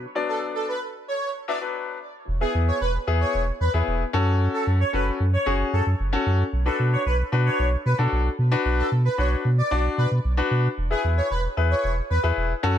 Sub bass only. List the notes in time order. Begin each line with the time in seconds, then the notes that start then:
2.28 E1
2.54 E2
2.81 E1
3.07 E2
3.34 E1
3.60 E2
3.74 E2
3.87 E1
4.13 F#2
4.67 F#2
4.93 F#1
5.20 F#2
5.46 F#1
5.73 F#2
5.86 F#2
5.99 F#1
6.26 F#2
6.53 B1
6.79 B2
7.06 B1
7.32 B2
7.59 B1
7.85 B2
7.99 B2
8.12 B1
8.38 B2
8.65 B1
8.91 B2
9.18 B1
9.45 B2
9.71 B1
9.98 B2
10.11 B2
10.24 B1
10.51 B2
10.77 E1
11.04 E2
11.30 E1
11.57 E2
11.84 E1
12.10 E2
12.23 E2
12.37 E1
12.63 F#2